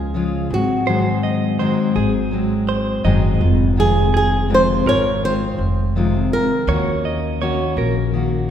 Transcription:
Already playing: C#2 F3 G#3 C#4 F4 G#4
0.14 C#3 F3 G#3 C#4 F4
0.50 G#1 F#3 G#3 C4 F#4 G#4
0.87 G#2 D#3 F#3 G#3 C4 G#4 C5
1.23 D#5
1.59 G#2 D#3 F#3 G#3 C4 G#4 C5
1.95 G#1 F#3 G#3 C4 G#4
2.31 F#3 G#3 C4 G#4
2.69 C5
3.04 F#1 G#2 D#3 F#3 G#3 C4 G#4 D#5
3.41 F1 D#3 G#3 C4 F4
3.76 F2 C3 D#3 G#3 C4 F4 G#4
4.14 G#4
4.49 F2 C3 D#3 G#3 C4 F4
4.54 C5
4.86 G#1 D#3 G#3 F4 A#4 C#5
5.21 D#3 G#3 C4 F4 C5
5.58 F1
5.96 F2 C3 D#3 G#3 C4 F4
6.32 D#3 G#3 C4 F4 A#4
6.67 D#2 D#3 A#3 C#4 F#4 C#5
7.05 D#5
7.41 D#3 A#3 C#4 F#4 C#5
7.77 A#1 A#3 C#4 F#4 A#4
8.13 D#3 A#3 C#4 F#4

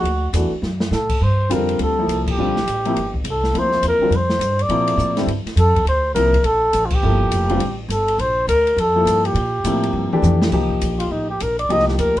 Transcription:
Already playing: F#4
0.03 D2, ride
0.33 E2 E3 A3 D4 F#4, hi-hat pedal, ride
0.51 muted upright bass stroke
0.62 F#2, snare
0.80 snare
0.91 A2 A4, snare, hi-hat pedal
1.09 kick, crash
1.21 G2 C5
1.49 F2 D3 G3 C4 F4 A#4, hi-hat pedal, ride
1.69 ride
1.79 D2 A4, ride
1.98 F3 A#3 E4 A4
2.07 C2, hi-hat pedal, ride
2.27 kick, crash
2.31 G4
2.37 A#1 D3 G3 C4 F4
2.56 snare
2.66 A1, hi-hat pedal, ride
2.85 C3 F3 A#3 E4, ride
2.96 G1, ride
3.14 kick
3.24 C2, hi-hat pedal, ride
3.31 A4
3.44 snare
3.53 D2 C3 F3 A#3 E4, ride
3.58 C5
3.72 snare
3.82 E2, hi-hat pedal, ride
3.88 A#4
4.00 D3 G3 C4 F4, muted upright bass stroke
4.10 F2, ride
4.16 C5
4.30 snare
4.39 G2, hi-hat pedal, ride
4.59 D5, ride
4.69 A#2 C3 F3 A#3 E4, ride
4.88 ride
4.97 A2, hi-hat pedal
5.17 D3 G3 C4 E4, snare, ride
5.27 G2, ride
5.46 muted upright bass stroke, snare, ride
5.56 F2 A4, hi-hat pedal, ride
5.75 kick, ride
5.85 D2 C5, ride
6.15 C2 C3 F3 A#3 E4 A#4, hi-hat pedal, ride
6.33 kick, ride
6.43 A#1 A4, ride
6.73 A1, hi-hat pedal, ride
6.85 F4
6.90 G4, kick, crash
7.03 G1 F3 A#3 E4 A4
7.31 F1, hi-hat pedal, ride
7.49 D3 G3 C4 F4, ride
7.59 A1, ride
7.88 G1 A4, hi-hat pedal, ride
8.08 ride
8.18 A#1 C5, ride
8.47 D2 A#4, hi-hat pedal, ride
8.67 ride
8.76 F2 A4, ride
8.96 F3 A#3 E4 A4
9.05 G2, hi-hat pedal, ride
9.25 G4, ride
9.34 A#2, ride
9.64 A2 C3 F3 A#3 E4, hi-hat pedal, ride
9.83 ride
9.93 G2
10.12 E3 A3 D4 G4, muted upright bass stroke, mid tom
10.22 F2, hi-hat pedal, mid tom
10.42 snare
10.51 C2 F3 A#3 D#4 G4, kick, crash
10.70 kick
10.81 A#1, hi-hat pedal, ride
11.00 F4, ride
11.11 A1 D#4
11.30 G4
11.40 A#1 A#4, hi-hat pedal, ride
11.59 D5, ride
11.69 C2 F3 A#3 D#4 G4 D#5, ride
11.79 snare
11.88 G4, snare
11.99 D2 A#4, hi-hat pedal, ride
12.17 kick, ride

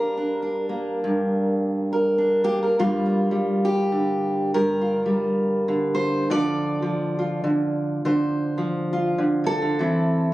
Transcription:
Already playing: G2 G3 A#3 A#4
0.00 D4
0.17 D4
0.42 D4
0.69 A#3
1.04 G2
1.93 A#4
2.18 D4
2.44 A#3 G4
2.63 A#4
2.79 G2 G3 A#3 F4
3.06 A#3
3.31 G3
3.65 G4
3.92 D3
4.54 G2 A#4
4.81 F4
5.06 G3
5.68 D3
5.95 C5
6.30 D3 F3 F4 A4 D5
6.82 F3
7.19 F4
7.44 D3
8.05 D3 C5
8.58 F3
8.93 F4
9.18 D3
9.44 C3 A4
9.62 D3
9.79 E3 C4 E4

